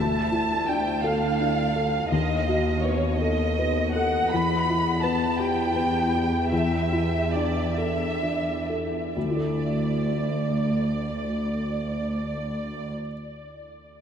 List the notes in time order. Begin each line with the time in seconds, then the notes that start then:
Already playing: D2 A5
0.32 E4
0.69 D4 G5
1.04 A4 F5
1.40 D4
1.76 A4
2.12 D#2 D#5
2.48 F#4
2.84 B3 C#5
3.20 A4 D#5
3.59 B3
3.94 A4 F#5
4.32 E2 B5
4.70 E4
5.03 B3 A5
5.39 G4 G5
5.76 B3
6.15 G4
6.52 E2 E5
6.93 E4
7.34 D4 D5
7.78 A4 E5
8.23 D4
8.70 A4
9.15 D2 D5
9.24 D3
9.30 E4
9.37 A4